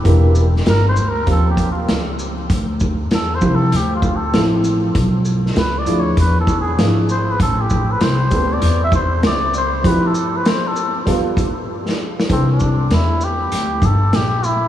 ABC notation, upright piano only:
X:1
M:4/4
L:1/8
Q:"Swing 16ths" 1/4=98
K:C
V:1 name="Upright piano"
[E,_B,DG] z3 [F,C_DG] z3 | z3 [F,CEG] z2 [F,CEA]2 | z3 [F,DE_A] z2 [F,DE^G] z | z3 [G,B,CA]3 z2 |
[F,CEG] z3 [G,B,FA] z3 | [E,CDA]3 z4 z |]